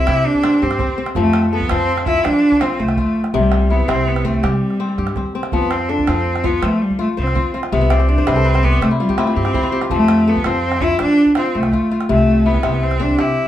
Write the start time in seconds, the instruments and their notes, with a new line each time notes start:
Already playing: kora C3 C4 E4, cello E4
0.07 upright bass C3, kora G4, calabash click
0.26 cello D4
0.34 calabash thump
0.44 kora C4, calabash click
0.62 upright bass G2, cello C4, kora G4
0.71 calabash click
0.79 kora C4, calabash thump
0.98 kora C4
1.06 calabash click
1.15 upright bass F2, kora F3, cello A3, calabash thump
1.33 calabash click
1.43 calabash click
1.53 cello B3, kora A4
1.61 calabash thump
1.69 upright bass F2, kora F3 F4, cello C4, calabash click
1.97 calabash click
2.06 cello E4, kora F4, calabash thump
2.24 upright bass F3, cello D4, kora C5, calabash click
2.52 calabash thump
2.61 cello C4, kora F4, calabash click
2.80 upright bass C2, cello A3, kora C5
2.89 calabash click
2.97 kora F4, calabash thump
3.24 calabash click
3.33 upright bass C2, kora C3, cello G3, calabash thump
3.52 calabash click
3.70 cello B3, kora E4, calabash click
3.80 calabash thump
3.88 upright bass C2, kora C3 C4, cello C4, calabash click
3.98 calabash click
4.08 cello B3
4.16 calabash click
4.25 cello A3, kora C4, calabash thump
4.43 upright bass C3, cello G3, kora G4, calabash click
4.70 calabash click
4.80 kora C4
4.98 upright bass G2, kora G4, calabash click
5.07 calabash click
5.16 kora C4, calabash thump
5.35 kora C4
5.43 calabash click
5.52 upright bass F2, kora F3, cello B3, calabash thump
5.71 cello C4, calabash click
5.80 calabash click
5.89 cello D4, kora A4
5.99 calabash thump
6.07 upright bass F2, kora F3 F4, cello C4, calabash click
6.36 calabash click
6.44 cello B3, kora F4, calabash thump
6.62 upright bass F3, cello A3, kora C5, calabash click
6.82 cello G3
6.90 calabash thump
6.99 cello A3, kora F4
7.17 upright bass C2, cello C4, kora C5
7.27 calabash click
7.35 kora F4, calabash thump
7.54 kora F4
7.63 calabash click
7.72 upright bass C2, kora C3 F5, cello B3, calabash thump
7.81 kora E5
7.90 cello C4, kora D5, calabash click
8.00 kora C5, calabash click
8.09 cello D4, kora D5
8.18 kora C5, calabash thump
8.27 upright bass C2, kora C3 B4, cello C4, calabash click
8.36 kora A4
8.45 kora B4
8.54 kora C5, calabash click
8.63 cello B3, kora C4 D5, calabash thump
8.73 kora E5
8.81 upright bass C3, cello A3, kora C5, calabash click
8.91 kora E4
9.00 cello G3, kora F4
9.09 kora G4, calabash thump
9.18 cello A3, kora C4 E4, calabash click
9.27 kora F4
9.36 upright bass G2, cello C4, kora G4
9.45 kora G4, calabash click
9.54 kora C4 E4, calabash thump
9.63 kora F4
9.72 kora G4
9.81 kora F4, calabash click
9.90 upright bass F2, kora F3, cello A3, calabash thump
10.08 calabash click
10.18 calabash click
10.27 cello B3, kora A4
10.36 calabash thump
10.44 upright bass F2, kora F3 F4, cello C4, calabash click
10.72 calabash click
10.81 cello E4, kora F4, calabash thump
10.99 upright bass F3, cello D4, kora C5, calabash click
11.26 calabash thump
11.35 cello C4, kora F4, calabash click
11.55 upright bass C2, cello A3, kora C5
11.63 calabash click
11.73 kora F4, calabash thump
11.91 kora F4
12.01 calabash click
12.09 upright bass C2, kora C3, cello A3, calabash thump
12.18 calabash click
12.46 cello B3, kora E4, calabash click
12.55 calabash thump, calabash click
12.63 upright bass C2, kora C3 C4, calabash click
12.83 cello C4, calabash click
12.91 calabash click
13.00 kora C4, cello D4, calabash thump, calabash click
13.10 calabash click
13.18 upright bass C3, cello E4, kora G4, calabash click